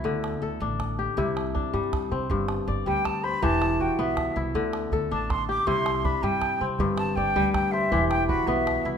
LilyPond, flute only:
\new Staff \with { instrumentName = "Flute" } { \time 12/8 \key g \major \tempo 4. = 107 r1. | r4. g''8 a''8 b''8 a''4 g''8 e''4 r8 | r4. a''8 c'''8 d'''8 c'''4 b''8 g''4 r8 | r8 a''8 g''4 g''8 e''4 g''8 b''8 e''4 r8 | }